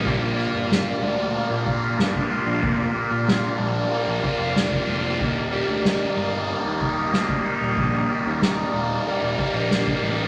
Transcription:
<<
  \new Staff \with { instrumentName = "Tonewheel organ" } { \time 4/4 \key ees \major \tempo 4 = 93 << { <g' bes' d''>1~ | <g' bes' d''>1~ | <g' bes' d''>1~ | <g' bes' d''>1 | } \\ { f'1~ | f'1 | ees'1~ | ees'1 | } >> }
  \new Staff \with { instrumentName = "Distorted electric guitar" } { \time 4/4 \key ees \major bes,8 bes8 f'8 d'8 bes8 f'8 d'8 f'8 | bes,8 bes8 f'8 d'8 bes8 f'8 d'8 f'8 | ees,8 g8 ees'8 bes8 g8 ees'8 bes8 ees'8 | ees,8 g8 ees'8 bes8 g8 ees'8 bes8 ees'8 | }
  \new Staff \with { instrumentName = "Picked electric bass" } { \clef bass \time 4/4 \key ees \major bes,,8. g,,8. d,8. bes,8. g,,8 r16 bes,,16 | f,,8 r16 bes,8. bes,,8 r16 bes,,16 r16 f,,8. f,,8 | ees,,8. d,8. g,,8. ees,8. d,8 r16 ees,,16 | bes,,8 r16 ees,8. ees,,8 r16 ees,,16 r16 bes,,8. a,,8 | }
  \new DrumStaff \with { instrumentName = "Drums" } \drummode { \time 4/4 <bd cymr>8 <cymr sn>8 <cymr sn>8 cymr8 cymr8 <bd cymr>8 <cymr sn>16 bd16 cymr8 | <bd cymr>8 cymr8 <cymr sn>8 cymr8 cymr8 <bd cymr>8 <cymr sn>16 bd16 cymr8 | <bd cymr>8 cymr8 <cymr sn>8 cymr8 cymr8 <bd cymr>8 <cymr sn>16 bd16 cymr8 | <bd cymr>8 cymr8 <cymr sn>8 cymr8 cymr8 <bd cymr>8 <cymr sn>16 bd16 cymr8 | }
>>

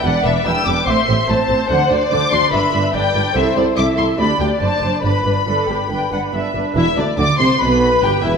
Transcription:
<<
  \new Staff \with { instrumentName = "Violin section" } { \time 4/4 \key g \major \tempo 4 = 144 fis''8 e''8 e'''8 d'''8 c'''4 a''4 | fis''8 d''8 d'''8 c'''8 b''4 g''4 | e''8 d''8 d'''8 c'''8 b''8 g''8 a''4 | b''2. r4 |
e''8 d''8 d'''8 c'''8 b''4 g''8 e''8 | }
  \new Staff \with { instrumentName = "Violin section" } { \time 4/4 \key g \major d''4 g''4 e''4 c''4~ | c''4 d''4 e''4 d''4 | c''4 e''4 d''2 | b'4 a'8 g'8 g''8 fis''8 e''4 |
e'8 d'8 d''8 c''8 b'4 g'8 e'8 | }
  \new Staff \with { instrumentName = "Viola section" } { \time 4/4 \key g \major <d' b'>8 <d' b'>8 <d' b'>8 <d' b'>8 <c' c''>8 <c' c''>8 <c' c''>8 <c' c''>8 | <d' c''>8 <d' c''>8 <d' c''>8 <d' c''>8 <d' b'>8 <d' b'>8 <d' b'>8 <d' b'>8 | <e' a'>8 <e' a'>8 <e' a'>8 <e' a'>8 <d' g'>8 <d' g'>8 <d' c''>8 <d' c''>8 | <d' b'>8 <d' b'>8 <d' b'>8 <d' b'>8 <d' b'>8 <d' b'>8 <d' b'>8 <d' b'>8 |
r2 b'2 | }
  \new Staff \with { instrumentName = "Cello section" } { \clef bass \time 4/4 \key g \major e,8 e,8 e,8 e,8 a,8 a,8 a,8 a,8 | d8 d8 d8 d8 g,8 g,8 g,8 g,8 | c,8 c,8 c,8 c,8 d,8 d,8 fis,8 fis,8 | g,8 g,8 g,8 g,8 g,8 g,8 g,8 g,8 |
e,8 d,8 d8 c8 b,4 g,8 e,8 | }
  \new Staff \with { instrumentName = "Double bass section" } { \clef bass \time 4/4 \key g \major e,,8 e,,8 e,,8 e,,8 a,,8 a,,8 a,,8 a,,8 | d,8 d,8 d,8 d,8 g,,8 g,,8 g,,8 g,,8 | c,8 c,8 c,8 c,8 d,8 d,8 fis,,8 fis,,8 | g,,8 g,,8 g,,8 g,,8 g,,8 g,,8 g,,8 g,,8 |
e,,8 d,8 d,8 c,8 b,,4 g,,8 e,,8 | }
>>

